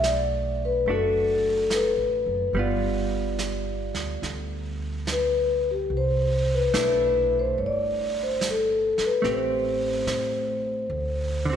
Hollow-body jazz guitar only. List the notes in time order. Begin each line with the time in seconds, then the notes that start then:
Already playing: A3 D4 F#4
0.88 A3 D4 F#4
2.55 G3 B3
2.59 F4
6.74 A3 D4 E4
9.22 A3 C4 G4
11.45 D3
11.50 C4